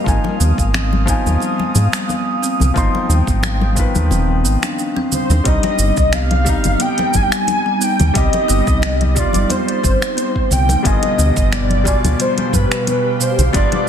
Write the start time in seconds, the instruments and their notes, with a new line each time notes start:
Already playing: synth texture F5
0.04 analog synth bass G#1, felt piano F3 D#4, analog synth pad F5 D#6, kick, shaker
0.08 felt piano G#5
0.24 kalimba G3, muted conga
0.40 analog synth bass D#2, kalimba B3, shaker
0.58 analog synth bass G#1, kick, shaker
0.74 kalimba C4, finger snap, muted conga, shaker
0.93 high conga
1.06 felt piano F3 D#4 G#5, kalimba B3, kick, shaker
1.26 analog synth bass D#2, high conga, shaker
1.40 kalimba G3, shaker
1.59 muted conga
1.75 analog synth bass G#2, high conga, shaker
1.92 kalimba G3, finger snap, shaker
2.08 kalimba B3, muted conga, shaker
2.42 kalimba C4, shaker
2.60 analog synth bass C2, high conga, low conga, shaker
2.74 analog synth bass G#1, felt piano F3 D#4 C6, kalimba B3, analog synth pad G5, kick, shaker
2.95 muted conga
3.09 analog synth bass D#2, kalimba G3, shaker
3.27 analog synth bass G#1, kick, shaker
3.43 finger snap, muted conga, shaker
3.61 kalimba G3, high conga
3.75 felt piano D#3 F3 B4, kalimba B3, kick, shaker
3.95 analog synth bass D#2, high conga, low conga, shaker
4.10 analog synth bass D#1, kalimba C4, muted conga, high conga, shaker
4.44 analog synth bass G#1, kalimba B3, shaker
4.62 kalimba D4, finger snap, muted conga, shaker
4.79 kalimba D4, shaker
4.96 kalimba C4, high conga
5.12 kalimba G3, soft synth lead C5, low conga, shaker
5.29 analog synth bass D#2, kalimba D4, muted conga, shaker
5.44 analog synth bass C2, felt piano G3 C4 D#4, kalimba G3, analog synth pad G3 D#4, soft synth lead D#5, kick, closed hi-hat, shaker
5.63 closed hi-hat, muted conga
5.78 analog synth bass G1, shaker
5.97 analog synth bass C2, kalimba G3, kick, shaker
6.13 kalimba B3, soft synth lead F5, finger snap, closed hi-hat, muted conga, shaker
6.31 closed hi-hat, high conga
6.44 felt piano G3, kalimba C4, kick, shaker
6.49 felt piano D#4
6.64 analog synth bass G1, closed hi-hat, high conga, low conga, shaker
6.80 kalimba B3, soft synth lead G5, closed hi-hat, shaker
6.98 closed hi-hat, muted conga
7.14 analog synth bass G1, kalimba G3, soft synth lead G#5, kick, high conga, shaker
7.22 soft synth lead G5
7.30 soft synth lead G#5, finger snap, closed hi-hat, shaker
7.47 closed hi-hat, muted conga, shaker
7.66 kalimba G3
7.81 kalimba B3, soft synth lead G5, shaker
8.00 analog synth bass D#2, closed hi-hat, high conga, low conga, shaker
8.14 analog synth bass C2, felt piano G3 G4, kalimba C4, soft synth lead D#5, kick, closed hi-hat, shaker
8.33 closed hi-hat, muted conga
8.48 analog synth bass G1, kalimba B3, shaker
8.67 analog synth bass C2, kick, shaker
8.82 kalimba G3, finger snap, closed hi-hat, muted conga, shaker
9.01 closed hi-hat, high conga
9.10 soft synth lead D#5
9.15 felt piano G3, soft synth lead D5, kick, shaker
9.19 felt piano F4
9.33 analog synth bass G1, kalimba G3, closed hi-hat, high conga, shaker
9.50 kalimba B3, soft synth lead C5, closed hi-hat, muted conga, high conga, shaker
9.68 closed hi-hat
9.83 analog synth bass G1, kalimba C4, kick, shaker
10.01 finger snap, closed hi-hat, muted conga, shaker
10.17 kalimba B3, closed hi-hat, shaker
10.35 kick, high conga
10.51 analog synth bass C2, kalimba G3, soft synth lead G5, low conga, shaker
10.69 closed hi-hat, muted conga, shaker
10.83 analog synth bass G1, analog synth pad B2 G4 F5, felt piano D3 G3 B3 F4 G#5, soft synth lead D#5, kick, closed hi-hat, shaker
11.02 kalimba G3, closed hi-hat, muted conga
11.18 analog synth bass D2, kalimba B3, shaker
11.37 analog synth bass G1, kick, shaker
11.52 kalimba B3, soft synth lead D5, finger snap, closed hi-hat, muted conga, shaker
11.70 closed hi-hat, high conga
11.84 felt piano B2 G3 D4 F4, kalimba B3, kick, shaker
11.88 felt piano G#5
12.04 analog synth bass D2, closed hi-hat, high conga, low conga, shaker
12.19 kalimba G3, soft synth lead C5, closed hi-hat, shaker
12.38 closed hi-hat, muted conga
12.53 analog synth bass G2, soft synth lead B4, kick, high conga, shaker
12.71 kalimba G3, finger snap, closed hi-hat, shaker
12.87 kalimba B3, closed hi-hat, muted conga, shaker
13.20 kalimba B2, soft synth lead C5, shaker
13.38 analog synth bass B1, closed hi-hat, high conga, low conga, shaker
13.53 analog synth bass G1, felt piano G3 B3 D4 F4, kalimba B3, soft synth lead D5, kick, closed hi-hat, shaker
13.57 felt piano D5
13.72 closed hi-hat, muted conga